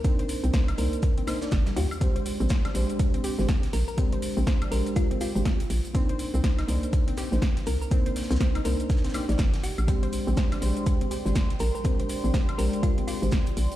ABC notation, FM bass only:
X:1
M:4/4
L:1/16
Q:"Swing 16ths" 1/4=122
K:Bbmix
V:1 name="FM bass" clef=bass
z3 C,, z2 C,, z4 z G,,, z E,, z | z3 B,,, z2 B,,, z4 A,,, z2 B,,, z | z3 B,,, z2 B,,, z4 A,,, z2 B,,, z | z3 C,, z2 C,, z4 B,,, z2 C,, z |
z3 C,, z2 C,, z4 B,,, G,,,3 B,,,- | B,,,3 B,,, z2 B,,, z4 A,,, z2 B,,, z | z3 B,,, z2 B,,, z4 A,,, z2 B,,, z |]